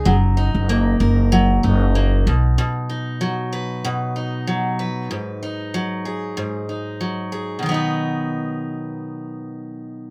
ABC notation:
X:1
M:4/4
L:1/16
Q:"Swing 16ths" 1/4=95
K:B
V:1 name="Steel-string acoustic guitar"
F,2 D2 A,2 A2 F,2 D2 A,2 B,,2 | B,,2 D2 F,2 B2 B,,2 D2 F,2 B2 | G,,2 D2 F,2 G2 G,,2 D2 F,2 G2 | [B,,D,F,B,DB]16 |]
V:2 name="Upright bass" clef=bass
F,,,3 F,,,3 F,,,4 F,,,4 B,,,2 | z16 | z16 | z16 |]